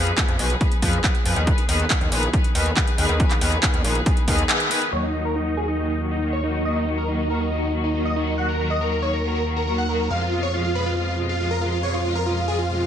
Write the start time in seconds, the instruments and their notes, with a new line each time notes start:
Already playing: analog synth bass F2, string section F3 B3 G#4 B4
0.07 closed hi-hat
0.18 string section F3 B3 G#4 B4, kick, clap, closed hi-hat
0.28 analog synth bass F2, closed hi-hat
0.39 analog synth bass B1, string section F3 B3 G#4 B4, open hi-hat
0.50 closed hi-hat
0.61 string section F3 B3 G#4 B4, kick, closed hi-hat
0.72 closed hi-hat
0.82 analog synth bass F2, string section F3 B3 G#4 B4, kick, open hi-hat
0.93 closed hi-hat
1.04 string section F3 B3 G#4 B4, kick, clap, closed hi-hat
1.15 closed hi-hat
1.26 analog synth bass F2, string section F3 B3 G#4 B4, open hi-hat
1.36 analog synth bass D#2, closed hi-hat
1.47 string section D#3 B3 G#4 B4, kick, closed hi-hat
1.58 closed hi-hat
1.69 analog synth bass D#2, string section D#3 B3 G#4 B4, open hi-hat
1.80 closed hi-hat
1.90 string section D#3 B3 G#4 B4, kick, clap, closed hi-hat
2.01 analog synth bass D#2, closed hi-hat
2.12 analog synth bass A#1, string section D#3 B3 G#4 B4, open hi-hat
2.23 closed hi-hat
2.33 string section D#3 B3 G#4 B4, kick, closed hi-hat
2.44 closed hi-hat
2.55 analog synth bass D#2, string section D#3 B3 G#4 B4, open hi-hat
2.66 closed hi-hat
2.76 string section D#3 B3 G#4 B4, kick, clap, closed hi-hat
2.87 closed hi-hat
2.98 analog synth bass D#2, string section D#3 B3 G#4 B4, open hi-hat
3.09 analog synth bass D#2, closed hi-hat
3.20 string section D#3 B3 G#4 B4, kick, closed hi-hat
3.31 clap, closed hi-hat
3.41 analog synth bass D#2, string section D#3 B3 G#4 B4, open hi-hat
3.52 closed hi-hat
3.63 string section D#3 B3 G#4 B4, kick, clap, closed hi-hat
3.74 analog synth bass D#2, closed hi-hat
3.85 analog synth bass A#1, string section D#3 B3 G#4 B4, open hi-hat
3.95 closed hi-hat
4.06 string section D#3 B3 G#4 B4, kick, closed hi-hat
4.17 closed hi-hat
4.28 analog synth bass D#2, string section D#3 B3 G#4 B4, kick, open hi-hat
4.39 closed hi-hat
4.49 string section D#3 B3 G#4 B4, clap, closed hi-hat
4.60 closed hi-hat
4.71 string section D#3 B3 G#4 B4, open hi-hat
4.82 closed hi-hat
4.92 analog synth bass D#2, string section D#3 F#3 A#3 F#4, supersaw synth C#5
5.03 supersaw synth D#4
5.14 string section D#3 F#3 A#3 F#4, supersaw synth D#4
5.25 supersaw synth A#4
5.36 string section D#3 F#3 A#3 F#4, supersaw synth D#4
5.46 supersaw synth D#4
5.57 string section D#3 F#3 A#3 F#4, supersaw synth G#4
5.68 supersaw synth D#4
5.79 string section D#3 F#3 A#3 F#4, supersaw synth D#4
5.90 supersaw synth D#4
6.00 string section D#3 F#3 A#3 F#4
6.11 supersaw synth D#4
6.22 string section D#3 F#3 A#3 F#4, supersaw synth D#4
6.33 supersaw synth C#5
6.43 string section D#3 F#3 A#3 F#4, supersaw synth D#4
6.54 supersaw synth D#4
6.65 string section D#3 F#3 A#3 F#4, supersaw synth D#5
6.76 supersaw synth D#4
6.87 string section D#3 F#3 A#3 F#4, supersaw synth D#4
6.97 supersaw synth A#4
7.08 string section D#3 F#3 A#3 F#4, supersaw synth D#4
7.19 supersaw synth D#4
7.30 string section D#3 F#3 A#3 F#4, supersaw synth A#4
7.41 supersaw synth D#4
7.51 string section D#3 F#3 A#3 F#4, supersaw synth D#4
7.62 supersaw synth D#4
7.73 string section D#3 F#3 A#3 F#4
7.84 supersaw synth D#4
7.95 string section D#3 F#3 A#3 F#4, supersaw synth D#4
8.05 supersaw synth D#5
8.16 string section D#3 F#3 A#3 F#4, supersaw synth D#4
8.27 supersaw synth D#4
8.38 string section D#3 F#3 A#3 F#4, supersaw synth F#5
8.49 supersaw synth A#4
8.59 string section D#3 F#3 A#3 F#4, supersaw synth A#4
8.70 supersaw synth D#5
8.81 string section D#3 F#3 A#3 F#4, supersaw synth A#4
8.92 supersaw synth A#4
9.02 string section D#3 F#3 A#3 F#4, supersaw synth C#5
9.13 supersaw synth A#4
9.24 string section D#3 F#3 A#3 F#4, supersaw synth A#4
9.35 supersaw synth A#4
9.46 string section D#3 F#3 A#3 F#4
9.56 supersaw synth A#4
9.67 string section D#3 F#3 A#3 F#4, supersaw synth A#4
9.78 supersaw synth F#5
9.89 string section D#3 F#3 A#3 F#4, supersaw synth A#4
10.00 supersaw synth A#4
10.10 analog synth bass F2, string section B2 F3 G#3 F4, supersaw synth F5
10.21 supersaw synth F4
10.32 string section B2 F3 G#3 F4, supersaw synth F4
10.43 supersaw synth C#5
10.54 string section B2 F3 G#3 F4, supersaw synth F4
10.64 supersaw synth F4
10.75 string section B2 F3 G#3 F4, supersaw synth B4
10.86 supersaw synth F4
10.97 string section B2 F3 G#3 F4, supersaw synth F4
11.08 supersaw synth F4
11.18 string section B2 F3 G#3 F4
11.29 supersaw synth F4
11.40 string section B2 F3 G#3 F4, supersaw synth F4
11.51 supersaw synth A#4
11.62 string section B2 F3 G#3 F4, supersaw synth F4
11.72 supersaw synth F4
11.83 string section B2 F3 G#3 F4, supersaw synth C#5
11.94 supersaw synth F4
12.05 string section B2 F3 G#3 F4, supersaw synth F4
12.15 supersaw synth A#4
12.26 string section B2 F3 G#3 F4, supersaw synth F4
12.37 supersaw synth F4
12.48 string section B2 F3 G#3 F4, supersaw synth G#4
12.59 supersaw synth F4
12.69 string section B2 F3 G#3 F4, supersaw synth F4
12.80 supersaw synth F4